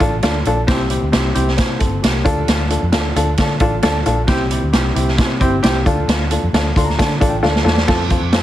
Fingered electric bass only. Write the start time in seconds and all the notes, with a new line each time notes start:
0.00 A1
0.22 D2
0.45 A#1
1.02 D2
1.12 C2
1.36 C2
1.59 C3
1.80 G1
2.03 C2
2.26 D2
2.48 D2
2.82 F2
2.94 D2
3.16 D2
3.38 D3
3.60 A1
3.83 D2
4.06 A#1
4.28 C2
4.62 D2
4.73 C2
4.95 C2
5.19 C3
5.41 G1
5.63 C2
5.86 D2
6.08 D2
6.43 F2
6.53 D2
6.76 D2
6.99 D3
7.22 A1
7.43 D2
7.65 E2
7.88 F2
8.21 F2